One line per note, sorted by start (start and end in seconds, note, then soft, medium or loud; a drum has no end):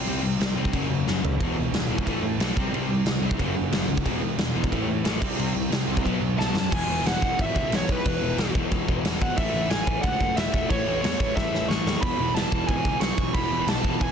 0.00 0.72 C3 medium
0.00 0.73 G3 loud
0.00 0.73 C4 loud
0.06 0.18 C2 loud
0.06 0.22 C3 medium
0.06 0.21 G3 medium
0.06 0.24 C4 loud
0.06 crash medium
0.23 0.35 C2 medium
0.23 0.38 C3 medium
0.23 0.38 G3 medium
0.39 0.52 C2 medium
0.39 0.55 C3 medium
0.39 0.55 G3 medium
0.39 snare loud
0.39 crash medium
0.55 0.68 C2 medium
0.55 0.72 C3 medium
0.55 0.73 G3 medium
0.55 0.73 C4 loud
0.65 kick medium
0.72 0.85 F#1 medium
0.72 0.88 F#2 medium
0.72 0.89 C#3 medium
0.72 0.89 F#3 loud
0.72 kick loud
0.72 crash medium
0.90 1.02 F#1 medium
0.90 1.05 F#2 medium
0.90 1.05 C#3 medium
1.06 1.18 F#1 medium
1.06 1.22 F#2 loud
1.06 1.22 C#3 loud
1.06 1.23 F#3 loud
1.06 snare medium
1.22 1.35 C#2 medium
1.22 1.38 F#2 medium
1.22 1.38 C#3 medium
1.22 floor tom loud
1.40 1.52 E1 medium
1.40 1.55 E2 medium
1.40 1.56 B2 loud
1.40 1.56 E3 loud
1.40 kick loud
1.40 crash medium
1.57 1.69 E1 medium
1.57 1.72 E2 medium
1.57 1.72 B2 medium
1.72 1.85 E1 medium
1.72 1.88 E2 medium
1.72 1.88 B2 medium
1.72 snare loud
1.72 crash medium
1.89 2.02 E1 loud
1.89 2.05 E2 medium
1.89 2.06 B2 medium
1.89 2.06 E3 loud
1.98 kick medium
2.07 2.19 A1 loud
2.07 2.22 A2 medium
2.07 2.23 E3 medium
2.07 2.23 A3 loud
2.07 kick loud
2.07 crash medium
2.22 2.35 A2 medium
2.22 2.38 A2 medium
2.22 2.39 E3 medium
2.38 2.51 B1 medium
2.38 2.55 A2 loud
2.38 2.56 E3 loud
2.38 2.56 A3 loud
2.38 snare loud
2.38 crash medium
2.57 2.69 C2 medium
2.57 2.72 C3 medium
2.57 2.73 G3 medium
2.57 2.73 C4 loud
2.57 kick loud
2.71 2.84 C2 medium
2.71 2.88 C3 medium
2.71 2.89 G3 medium
2.71 2.89 C4 medium
2.71 crash medium
2.87 3.00 C2 medium
2.87 3.05 C3 medium
2.87 3.05 G3 medium
3.05 3.18 C2 medium
3.05 3.21 C3 medium
3.05 3.22 G3 medium
3.05 snare loud
3.05 crash medium
3.20 3.33 C2 medium
3.20 3.38 C3 medium
3.20 3.38 G3 medium
3.20 3.39 C4 medium
3.31 kick medium
3.39 3.52 F#1 medium
3.39 3.55 F#2 medium
3.39 3.55 C#3 medium
3.39 3.55 F#3 loud
3.39 kick medium
3.39 crash medium
3.56 3.68 F#1 medium
3.56 3.70 F#2 medium
3.56 3.71 C#3 medium
3.71 3.85 F#1 medium
3.71 3.87 F#2 medium
3.71 3.87 C#3 loud
3.71 3.88 F#3 loud
3.71 snare loud
3.71 crash medium
3.88 4.01 C#2 medium
3.88 4.04 F#2 medium
3.88 4.04 C#3 medium
3.97 kick medium
4.04 4.18 E1 medium
4.04 4.19 E2 medium
4.04 4.20 B2 medium
4.04 4.21 E3 loud
4.04 kick medium
4.04 crash medium
4.20 4.35 E1 medium
4.20 4.36 E2 medium
4.20 4.37 B2 medium
4.38 4.51 E1 medium
4.38 4.53 E2 medium
4.38 4.54 B2 medium
4.38 snare loud
4.38 crash medium
4.54 4.68 E1 medium
4.54 4.71 E2 loud
4.54 4.71 B2 medium
4.54 4.71 E3 loud
4.64 kick medium
4.72 4.84 A1 medium
4.72 4.87 A2 medium
4.72 4.87 E3 medium
4.72 4.88 A3 loud
4.72 kick medium
4.72 crash medium
4.88 5.01 A2 medium
4.88 5.02 A2 medium
4.88 5.03 E3 medium
5.04 5.17 A1 medium
5.04 5.20 A2 medium
5.04 5.20 E3 loud
5.04 5.21 A3 loud
5.04 snare loud
5.04 crash medium
5.20 5.34 C2 medium
5.20 5.35 C3 medium
5.20 5.36 G3 loud
5.20 5.37 C4 loud
5.20 kick loud
5.20 crash loud
5.36 5.51 C2 loud
5.36 5.52 C3 medium
5.36 5.53 G3 medium
5.36 5.54 C4 medium
5.36 crash medium
5.53 5.67 C2 medium
5.53 5.69 C3 medium
5.53 5.69 G3 medium
5.71 5.84 C2 loud
5.71 5.86 C3 medium
5.71 5.86 G3 medium
5.71 snare loud
5.71 crash medium
5.87 6.05 C2 medium
5.87 6.03 C3 medium
5.87 6.04 G3 loud
5.87 6.04 C4 loud
5.97 kick medium
6.04 6.18 B1 loud
6.04 6.19 B2 medium
6.04 6.19 F#3 loud
6.04 6.21 B3 loud
6.04 kick medium
6.04 crash medium
6.21 6.34 B1 medium
6.21 6.36 B2 medium
6.21 6.36 F#3 medium
6.37 6.50 B1 medium
6.37 6.53 B2 medium
6.37 6.54 F#3 loud
6.37 6.54 B3 loud
6.37 6.70 A5 loud
6.37 snare medium
6.54 6.67 F#2 medium
6.54 6.70 B2 medium
6.54 6.70 F#3 medium
6.54 snare loud
6.71 6.82 E1 loud
6.71 6.89 E2 loud
6.71 6.88 B2 medium
6.71 6.88 E3 loud
6.71 7.07 G#5 loud
6.71 kick loud
6.71 crash loud
6.71 crash medium
6.87 6.98 E1 medium
6.87 7.04 E2 medium
6.87 7.04 B2 medium
6.87 7.05 E3 medium
7.05 7.15 E1 loud
7.05 7.22 E2 medium
7.05 7.21 B2 loud
7.05 7.21 E3 loud
7.05 7.40 F#5 medium
7.05 snare loud
7.05 crash medium
7.21 7.32 E1 loud
7.21 7.37 E2 medium
7.21 7.37 B2 medium
7.21 7.39 E3 medium
7.21 kick medium
7.38 7.49 G#1 loud
7.38 7.54 E2 medium
7.38 7.54 B2 loud
7.38 7.54 E3 medium
7.38 7.74 E5 loud
7.38 kick loud
7.38 crash medium
7.54 7.66 C#2 medium
7.54 7.72 E2 medium
7.54 7.72 B2 medium
7.54 7.73 E3 loud
7.54 kick medium
7.72 7.82 B1 medium
7.72 7.89 E2 loud
7.72 7.88 B2 loud
7.72 7.89 E3 medium
7.72 snare loud
7.72 crash medium
7.76 7.91 C#5 medium
7.89 7.99 B1 medium
7.89 8.04 E2 medium
7.89 8.05 B2 medium
7.89 8.06 E3 medium
7.89 8.52 B4 medium
7.89 kick loud
8.05 8.15 E1 loud
8.05 8.21 E2 loud
8.05 8.20 B2 loud
8.05 8.20 E3 loud
8.05 kick loud
8.05 crash medium
8.21 8.31 E1 loud
8.21 8.36 E2 medium
8.21 8.37 B2 medium
8.21 8.39 E3 medium
8.37 8.48 B1 loud
8.37 8.55 E2 loud
8.37 8.54 B2 medium
8.37 8.55 E3 loud
8.37 snare loud
8.37 crash medium
8.55 8.65 E1 loud
8.55 8.69 E2 medium
8.55 8.71 B2 medium
8.55 8.72 E3 loud
8.55 kick loud
8.71 8.81 E1 loud
8.71 8.87 E2 medium
8.71 8.87 B2 medium
8.71 8.86 E3 medium
8.71 kick loud
8.71 crash medium
8.87 8.98 E1 medium
8.87 9.03 E2 loud
8.87 9.04 B2 loud
8.87 9.05 E3 loud
8.87 kick medium
9.04 9.15 E1 medium
9.04 9.22 E2 loud
9.04 9.21 B2 loud
9.04 9.21 E3 loud
9.04 snare loud
9.04 crash medium
9.21 9.31 G#1 loud
9.21 9.37 E2 medium
9.21 9.37 B2 medium
9.21 9.38 E3 medium
9.21 9.38 F#5 medium
9.21 kick loud
9.37 9.48 A1 loud
9.37 9.54 A2 medium
9.37 9.54 E3 loud
9.37 9.53 A3 loud
9.37 9.71 E5 loud
9.37 kick loud
9.37 crash medium
9.53 9.64 A1 medium
9.53 9.70 A2 medium
9.53 9.71 E3 medium
9.53 9.71 A3 loud
9.70 9.81 A1 medium
9.70 9.88 A2 loud
9.70 9.87 E3 medium
9.70 9.86 A3 loud
9.70 10.01 G#5 loud
9.70 snare loud
9.70 crash medium
9.87 9.97 A1 loud
9.87 10.02 A2 medium
9.87 10.04 E3 loud
9.87 10.04 A3 loud
9.87 kick loud
10.02 10.14 C#2 loud
10.02 10.20 A2 medium
10.02 10.20 E3 medium
10.02 10.19 A3 medium
10.02 10.37 F#5 loud
10.02 kick loud
10.02 crash medium
10.20 10.30 F#1 medium
10.20 10.35 A2 medium
10.20 10.37 E3 loud
10.20 10.37 A3 loud
10.20 kick medium
10.36 10.46 E1 medium
10.36 10.54 A2 loud
10.36 10.54 E3 medium
10.36 10.52 A3 loud
10.36 10.70 E5 loud
10.36 snare loud
10.36 crash medium
10.53 10.64 E1 loud
10.53 10.68 A2 medium
10.53 10.69 E3 medium
10.53 10.69 A3 loud
10.53 kick loud
10.70 10.80 A1 loud
10.70 10.86 A2 loud
10.70 10.86 E3 loud
10.70 10.84 A3 loud
10.70 11.00 C#5 loud
10.70 kick loud
10.70 crash medium
10.85 10.96 A1 medium
10.85 11.02 A2 medium
10.85 11.04 E3 medium
10.85 11.04 A3 loud
11.02 11.13 E2 medium
11.02 11.20 A2 medium
11.02 11.21 E3 loud
11.02 11.19 A3 loud
11.02 11.36 C#5 loud
11.02 snare loud
11.02 crash medium
11.20 11.30 A1 loud
11.20 11.34 A2 medium
11.20 11.36 E3 medium
11.20 11.36 A3 medium
11.20 kick loud
11.36 11.46 A1 loud
11.36 11.53 A2 medium
11.36 11.53 E3 medium
11.36 11.52 A3 medium
11.36 11.70 E5 loud
11.36 kick loud
11.36 snare medium
11.52 11.63 A1 medium
11.52 11.68 A2 medium
11.52 11.70 E3 loud
11.52 11.70 A3 loud
11.52 snare medium
11.68 11.79 A1 medium
11.68 11.86 A2 medium
11.68 11.86 E3 medium
11.68 11.85 A3 loud
11.68 12.01 C#6 loud
11.68 snare loud
11.85 11.96 D#2 loud
11.85 12.02 A2 medium
11.85 12.03 E3 medium
11.85 12.02 A3 medium
11.85 snare loud
12.02 12.12 E1 loud
12.02 12.20 E2 loud
12.02 12.19 B2 loud
12.02 12.19 E3 loud
12.02 12.36 B5 loud
12.02 kick loud
12.02 crash medium
12.18 12.29 E1 medium
12.18 12.35 E2 medium
12.18 12.35 B2 medium
12.18 12.36 E3 medium
12.34 12.45 E1 loud
12.34 12.53 E2 loud
12.34 12.52 B2 medium
12.34 12.52 E3 loud
12.34 12.67 A5 loud
12.34 snare loud
12.34 crash medium
12.52 12.62 E1 loud
12.52 12.68 E2 medium
12.52 12.68 B2 medium
12.52 12.70 E3 loud
12.52 kick loud
12.67 12.79 G#1 loud
12.67 12.86 E2 medium
12.67 12.85 B2 loud
12.67 12.85 E3 loud
12.67 12.99 G#5 loud
12.67 kick loud
12.67 crash medium
12.85 12.95 C#2 medium
12.85 12.99 E2 medium
12.85 13.01 B2 loud
12.85 13.02 E3 loud
12.85 kick medium
13.00 13.11 B1 medium
13.00 13.17 E2 medium
13.00 13.16 B2 loud
13.00 13.17 E3 loud
13.00 13.34 C#6 loud
13.00 snare loud
13.00 crash medium
13.17 13.28 B1 loud
13.17 13.33 E2 medium
13.17 13.33 B2 medium
13.17 13.35 E3 medium
13.17 kick loud
13.34 13.45 E1 loud
13.34 13.51 E2 loud
13.34 13.50 B2 loud
13.34 13.50 E3 loud
13.34 13.69 B5 loud
13.34 kick loud
13.34 crash medium
13.50 13.61 E1 medium
13.50 13.67 E2 medium
13.50 13.68 B2 medium
13.50 13.69 E3 medium
13.67 13.78 B1 loud
13.67 13.84 E2 medium
13.67 13.83 B2 medium
13.67 13.83 E3 loud
13.67 14.01 A5 loud
13.67 snare loud
13.67 crash medium
13.84 13.94 E1 loud
13.84 13.99 E2 medium
13.84 13.99 B2 medium
13.84 14.00 E3 loud
13.84 kick loud
14.00 14.11 E1 loud
14.00 14.12 E2 medium
14.00 14.12 B2 medium
14.00 14.12 E3 medium
14.00 14.12 G#5 loud
14.00 kick loud
14.00 crash medium